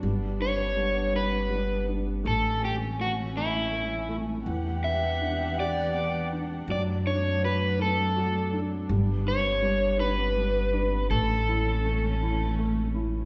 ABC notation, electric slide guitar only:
X:1
M:6/8
L:1/8
Q:3/8=54
K:Glyd
V:1 name="Electric slide guitar"
z c2 B2 z | A G F E2 z | z e2 d2 z | d c B A2 z |
z c2 B3 | A4 z2 |]